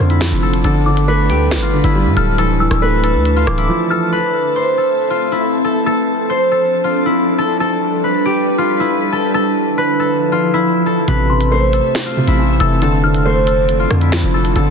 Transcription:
0.00 0.31 F2 loud
0.00 0.64 D3 loud
0.00 0.63 F3 medium
0.00 0.43 A3 medium
0.00 0.63 C4 medium
0.00 4.08 D4 medium
0.00 0.16 F4 medium
0.00 0.42 A4 medium
0.00 2.34 A4 medium
0.00 1.14 C5 medium
0.10 1.68 E4 medium
0.10 closed hi-hat medium
0.21 0.64 F3 medium
0.21 finger snap loud
0.21 snare loud
0.32 0.63 F1 loud
0.43 0.64 A4 medium
0.54 closed hi-hat medium
0.64 1.31 G1 loud
0.64 0.85 D3 medium
0.64 2.37 G3 medium
0.64 2.16 A4 medium
0.64 2.37 B4 medium
0.64 closed hi-hat medium
0.86 1.72 D3 medium
0.86 1.47 D6 medium
0.97 closed hi-hat medium
1.08 2.17 A3 loud
1.08 2.82 B4 medium
1.30 1.58 D2 loud
1.30 3.65 G4 medium
1.30 closed hi-hat medium
1.51 finger snap loud
1.51 snare loud
1.51 closed hi-hat medium
1.57 1.83 G1 loud
1.62 1.90 F4 medium
1.73 2.38 D3 medium
1.84 2.07 G1 loud
1.84 3.42 E4 medium
1.84 closed hi-hat medium
1.95 2.38 G3 loud
2.06 2.16 G2 loud
2.17 2.69 D1 loud
2.17 2.38 A4 medium
2.17 2.37 F6 medium
2.17 closed hi-hat medium
2.38 4.11 D3 medium
2.38 2.59 E3 medium
2.38 4.11 E4 medium
2.38 3.03 A4 loud
2.38 4.11 A4 medium
2.38 closed hi-hat medium
2.60 3.45 E3 medium
2.60 3.43 E6 medium
2.71 3.16 D1 loud
2.71 cross-stick medium
2.71 closed hi-hat medium
2.82 3.91 A3 medium
2.82 4.12 B4 medium
3.04 3.90 A4 medium
3.04 closed hi-hat medium
3.15 3.45 D2 loud
3.25 closed hi-hat medium
3.36 3.64 F4 medium
3.47 3.69 D1 loud
3.47 4.12 E3 medium
3.47 3.88 D6 medium
3.47 cross-stick loud
3.47 closed hi-hat medium
3.58 5.16 E4 medium
3.58 closed hi-hat medium
3.69 4.12 F3 medium
3.90 4.77 A4 medium
3.90 4.11 F6 medium
4.12 5.85 A3 medium
4.12 5.84 C4 medium
4.12 9.30 A4 medium
4.12 4.62 B4 loud
4.12 5.84 E5 medium
4.56 6.29 C5 medium
4.78 5.64 A4 medium
5.10 5.38 F4 medium
5.32 6.90 E4 medium
5.64 5.86 A4 medium
5.86 7.58 F3 medium
5.86 7.58 C4 medium
5.86 11.04 D4 medium
5.86 6.51 A4 loud
6.30 8.10 C5 medium
6.51 7.38 A4 medium
6.84 7.12 F4 medium
7.06 8.64 E4 medium
7.38 7.60 A4 medium
7.60 9.32 G3 medium
7.60 9.12 A4 loud
7.60 9.32 B4 medium
8.04 9.77 B4 medium
8.25 10.61 G4 medium
8.58 8.86 F4 medium
8.80 10.38 E4 medium
9.12 9.34 A4 medium
9.34 11.06 D3 medium
9.34 11.06 F3 medium
9.34 11.06 E4 medium
9.34 9.99 A4 loud
9.78 11.08 B4 medium
10.00 10.86 A4 medium
10.32 10.60 F4 medium
10.54 12.12 E4 medium
10.86 11.73 A4 medium
11.08 11.81 A1 loud
11.08 11.28 C3 loud
11.08 12.80 A3 medium
11.08 12.80 C4 medium
11.08 12.80 A4 medium
11.08 11.58 B4 loud
11.08 12.80 E5 medium
11.08 closed hi-hat medium
11.29 12.15 C3 medium
11.29 11.91 C6 medium
11.41 closed hi-hat medium
11.51 12.60 A3 medium
11.51 13.25 C5 medium
11.73 12.60 A4 medium
11.73 closed hi-hat medium
11.95 finger snap loud
11.95 snare loud
11.95 closed hi-hat medium
12.06 12.34 F4 medium
12.17 12.82 C3 medium
12.28 12.59 A1 loud
12.28 13.86 E4 medium
12.28 closed hi-hat medium
12.39 12.82 E3 medium
12.60 13.87 F1 loud
12.60 12.82 A4 medium
12.60 12.81 E6 medium
12.60 closed hi-hat medium
12.82 13.02 D3 loud
12.82 14.54 F3 medium
12.82 14.54 C4 medium
12.82 14.54 D4 medium
12.82 14.70 A4 medium
12.82 13.47 A4 loud
12.82 closed hi-hat medium
13.04 13.89 D3 medium
13.04 13.65 F6 medium
13.14 closed hi-hat medium
13.25 14.34 A3 medium
13.25 14.70 C5 medium
13.47 14.34 A4 medium
13.47 closed hi-hat medium
13.69 closed hi-hat medium
13.80 14.07 F4 medium
13.91 14.22 F2 loud
13.91 14.54 D3 medium
13.91 cross-stick loud
13.91 closed hi-hat medium
14.01 14.70 E4 medium
14.01 closed hi-hat medium
14.12 14.56 F3 loud
14.12 finger snap loud
14.12 snare loud
14.23 14.55 F1 loud
14.34 14.55 A4 medium
14.45 closed hi-hat medium
14.56 14.70 G1 loud
14.56 14.70 D3 loud
14.56 14.70 A4 loud
14.56 closed hi-hat medium

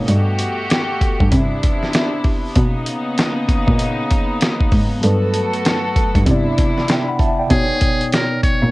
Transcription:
0.00 0.10 B2 medium
0.00 1.28 B2 medium
0.00 0.11 D#4 soft
0.08 0.37 G2 loud
0.08 1.31 A3 medium
0.08 1.31 F#4 medium
0.08 1.31 G4 medium
0.08 closed hi-hat medium
0.39 closed hi-hat medium
0.70 snare loud
0.70 closed hi-hat medium
1.01 kick medium
1.01 closed hi-hat medium
1.20 1.31 G2 medium
1.20 kick loud
1.32 2.54 C3 medium
1.32 1.90 C3 loud
1.32 7.47 B3 medium
1.32 2.54 D4 medium
1.32 2.54 E4 medium
1.32 kick medium
1.32 closed hi-hat loud
1.63 kick medium
1.63 closed hi-hat medium
1.83 snare soft
1.94 snare loud
1.94 closed hi-hat medium
2.24 kick loud
2.24 open hi-hat medium
2.56 2.84 B2 loud
2.56 5.01 C#3 medium
2.56 5.01 A#3 medium
2.56 5.01 D#4 medium
2.56 kick loud
2.56 closed hi-hat medium
2.86 closed hi-hat medium
3.18 snare loud
3.18 closed hi-hat medium
3.49 kick medium
3.49 closed hi-hat medium
3.68 3.78 A#2 medium
3.68 kick medium
3.79 closed hi-hat loud
4.11 kick medium
4.11 closed hi-hat medium
4.41 snare loud
4.41 closed hi-hat medium
4.61 kick medium
4.72 5.00 G#2 medium
4.72 kick loud
4.72 open hi-hat medium
4.98 6.22 G2 medium
4.98 6.23 F#3 medium
5.03 5.31 G2 loud
5.03 6.26 A3 medium
5.03 6.26 F#4 medium
5.03 6.25 A4 medium
5.03 6.26 A4 medium
5.03 6.26 B4 medium
5.03 closed hi-hat medium
5.34 closed hi-hat medium
5.53 closed hi-hat soft
5.65 snare loud
5.65 closed hi-hat medium
5.96 kick loud
5.96 closed hi-hat medium
6.15 6.26 G2 medium
6.15 kick medium
6.15 closed hi-hat medium
6.23 7.46 C3 medium
6.23 7.49 C3 medium
6.23 6.85 C3 loud
6.23 7.48 B3 medium
6.23 7.49 D4 medium
6.23 7.49 E4 medium
6.23 kick medium
6.23 closed hi-hat loud
6.28 7.49 E4 medium
6.28 6.59 D5 medium
6.58 kick medium
6.58 closed hi-hat medium
6.78 snare soft
6.88 7.08 D5 medium
6.88 7.08 G5 medium
6.88 snare loud
6.88 closed hi-hat medium
7.08 7.20 F#5 medium
7.08 7.19 B5 medium
7.19 7.38 E5 medium
7.19 7.38 A5 medium
7.19 kick loud
7.19 closed hi-hat medium
7.39 7.69 D5 medium
7.39 7.68 G5 medium
7.47 8.71 B2 medium
7.47 8.71 B3 medium
7.47 closed hi-hat medium
7.51 7.79 B2 loud
7.51 8.71 D#4 medium
7.51 8.09 G#4 loud
7.51 8.71 C#5 medium
7.51 kick loud
7.81 kick medium
7.81 closed hi-hat medium
8.01 closed hi-hat soft
8.12 8.41 A#4 medium
8.12 snare loud
8.12 closed hi-hat medium
8.43 8.71 C#5 medium
8.43 kick medium
8.43 closed hi-hat medium
8.63 8.71 A#2 medium

